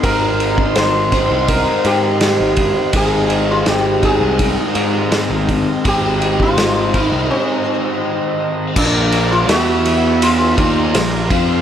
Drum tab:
CC |----------------|----------------|----------------|x---------------|
RD |x-x-x-x-x-x-x-x-|x-x-x-x-x-x-x-x-|x-x-x-x---------|--x-x-x-x-x-x-x-|
SD |----o-o-----o---|----o-------o---|----o-----------|----o-------o---|
BD |o--o--o-o-----o-|o-----o-o-----o-|o--o--o---------|o---------o---o-|